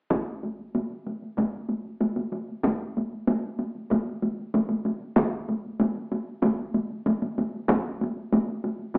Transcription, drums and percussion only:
0.11 taiko, taiko high
0.28 taiko high
0.43 taiko high
0.59 taiko high
0.75 taiko high
0.91 taiko high
1.07 taiko high
1.22 taiko high
1.37 taiko, taiko high
1.54 taiko high
1.69 taiko high
1.85 taiko high
2.01 taiko high
2.16 taiko high
2.33 taiko high
2.49 taiko high
2.63 taiko, taiko high
2.81 taiko high
2.97 taiko high
3.12 taiko high
3.27 taiko high
3.43 taiko high
3.59 taiko high
3.75 taiko high
3.90 taiko, taiko high
4.07 taiko high
4.22 taiko high
4.38 taiko high
4.54 taiko high
4.69 taiko high
4.85 taiko high
5.00 taiko high
5.16 taiko, taiko high
5.33 taiko high
5.49 taiko high
5.65 taiko high
5.80 taiko high
5.96 taiko high
6.12 taiko high
6.42 taiko, taiko high
6.59 taiko high
6.74 taiko high
6.90 taiko high
7.06 taiko high
7.22 taiko high
7.38 taiko high
7.54 taiko high
7.68 taiko, taiko high
7.86 taiko high
8.01 taiko high
8.17 taiko high
8.32 taiko high
8.48 taiko high
8.64 taiko high
8.79 taiko high
8.94 taiko, taiko high

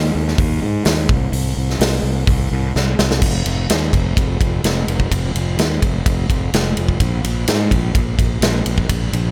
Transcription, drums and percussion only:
0.28 snare
0.38 kick, open hi-hat
0.85 snare, open hi-hat
1.09 kick
1.33 open hi-hat
1.70 snare
1.81 snare, open hi-hat
2.27 kick, open hi-hat
2.76 snare
2.99 snare
3.11 snare
3.22 kick, crash
3.46 ride
3.70 snare, ride
3.93 kick, ride
4.17 kick, ride
4.41 kick, ride
4.64 snare, ride
4.88 ride
5.00 kick
5.12 kick, ride
5.36 ride
5.59 snare, ride
5.82 kick, ride
6.06 kick, ride
6.30 kick, ride
6.54 snare, ride
6.77 ride
6.89 kick
7.00 kick, ride
7.24 ride
7.48 snare, ride
7.71 kick, ride
7.95 kick, ride
8.19 kick, ride
8.42 snare, ride
8.66 ride
8.78 kick
8.89 kick, ride
9.13 ride

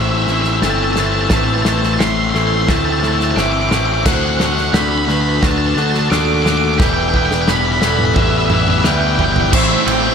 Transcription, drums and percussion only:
0.27 snare
0.44 snare
0.62 snare
0.96 snare
1.30 kick, snare
1.65 snare
1.83 snare
2.00 snare
2.35 snare
2.68 kick, snare
3.03 snare
3.20 snare
3.37 snare
3.71 snare
4.06 kick, snare, crash
4.40 snare
4.58 snare
4.74 snare
5.09 snare
5.43 kick, snare
5.77 snare
5.94 snare
6.12 snare
6.46 snare
6.80 kick, snare
7.14 kick
7.31 snare
7.48 snare
7.82 snare
7.99 mid tom
8.16 kick, mid tom
8.50 mid tom
8.68 mid tom
8.84 snare
9.19 floor tom
9.36 floor tom
9.53 kick, crash
9.88 crash

